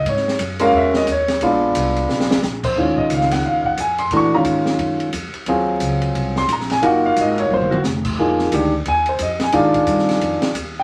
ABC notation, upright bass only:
X:1
M:4/4
L:1/8
Q:"Swing" 1/4=177
K:Bbmix
V:1 name="Upright bass" clef=bass
A,,2 _G,,2 _F,,2 E,,2 | B,,,2 C,,2 _C,,2 B,,,2 | [K:Ebdor] E,, z D,,2 E,,2 F,,2 | B,,2 A,,2 G,,2 F,, z |
E,,2 D,,2 C,,2 B,,,2 | G,,,2 A,,,2 G,,,2 F,,,2 | F,,2 =D,,2 E,,2 F,,2 | A,,2 =G,,2 F,, z E,,2 |]